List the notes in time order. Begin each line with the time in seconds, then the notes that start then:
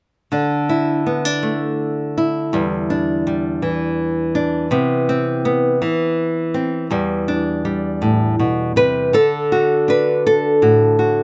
0.32 D3 D4
0.69 E4
1.06 B3
1.25 D4
1.43 A3
2.18 E4
2.53 E2 G3
2.90 D4
3.27 G3
3.62 E3
4.35 D4
4.71 C3 B3
5.09 C4
5.45 B3
5.82 E3
6.54 C4
6.91 E2 G3
7.28 D4
7.65 G3
8.02 A2
8.39 B2
8.76 C3 B4
9.13 D3 A4
9.52 F#4
9.88 D4 B4
10.27 A4
10.62 A2 F#4
10.99 F#4